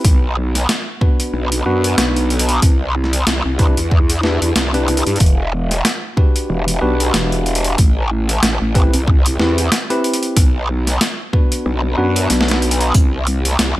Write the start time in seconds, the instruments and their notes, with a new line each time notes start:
0.01 closed hi-hat
0.05 wobble bass B1, kick, closed hi-hat
0.55 snare, closed hi-hat
0.69 snare, closed hi-hat
1.01 tine electric piano B3 D4 F#4 B4, kick
1.20 closed hi-hat
1.33 wobble bass B1
1.52 closed hi-hat
1.66 wobble bass F#2, tine electric piano B3 D4 F#4 B4
1.84 closed hi-hat
1.98 wobble bass B1, snare, closed hi-hat
2.16 closed hi-hat
2.30 closed hi-hat
2.39 closed hi-hat
2.49 closed hi-hat
2.62 wobble bass C2, kick, closed hi-hat
3.04 snare
3.13 closed hi-hat
3.27 wobble bass C2, snare, closed hi-hat
3.46 wobble bass C2
3.59 tine electric piano D4 E4 G4 B4, kick, closed hi-hat
3.77 wobble bass E2, closed hi-hat
3.91 kick
4.10 closed hi-hat
4.23 tine electric piano D4 E4 G4 B4, snare
4.42 wobble bass E2, closed hi-hat
4.56 wobble bass C2, snare, closed hi-hat
4.74 tine electric piano D4 E4 G4 B4, closed hi-hat
4.88 closed hi-hat
4.97 closed hi-hat
5.07 wobble bass G2, closed hi-hat
5.16 closed hi-hat
5.20 wobble bass E1, kick, closed hi-hat
5.26 closed hi-hat
5.71 snare, closed hi-hat
5.85 snare, closed hi-hat
6.17 tine electric piano D4 F#4 G4 B4, kick
6.36 closed hi-hat
6.50 wobble bass E1
6.68 closed hi-hat
6.82 wobble bass B1, tine electric piano D4 F#4 G4 B4
7.00 closed hi-hat
7.14 wobble bass E1, snare, closed hi-hat
7.32 closed hi-hat
7.46 closed hi-hat
7.55 closed hi-hat
7.64 closed hi-hat
7.78 wobble bass A1, kick, closed hi-hat
8.29 snare, closed hi-hat
8.43 wobble bass A1, snare, closed hi-hat
8.62 wobble bass A1
8.75 tine electric piano C4 E4 G4 B4, kick, closed hi-hat
8.94 wobble bass C2, closed hi-hat
9.08 kick
9.26 closed hi-hat
9.40 wobble bass E2, tine electric piano C4 E4 G4 B4, snare
9.58 closed hi-hat
9.72 snare, closed hi-hat
9.90 tine electric piano C4 E4 G4 B4, closed hi-hat
10.04 closed hi-hat
10.14 closed hi-hat
10.23 closed hi-hat
10.37 wobble bass B1, kick, closed hi-hat
10.87 snare, closed hi-hat
11.01 snare, closed hi-hat
11.33 tine electric piano B3 D4 F#4 B4, kick
11.52 closed hi-hat
11.66 wobble bass B1
11.98 wobble bass F#2, tine electric piano B3 D4 F#4 B4
12.16 closed hi-hat
12.30 wobble bass B1, snare, closed hi-hat
12.41 snare
12.48 snare, closed hi-hat
12.62 closed hi-hat
12.71 closed hi-hat
12.81 closed hi-hat
12.94 wobble bass C2, kick, closed hi-hat
13.27 closed hi-hat
13.45 snare, closed hi-hat
13.52 snare
13.59 wobble bass C2, snare, closed hi-hat
13.68 snare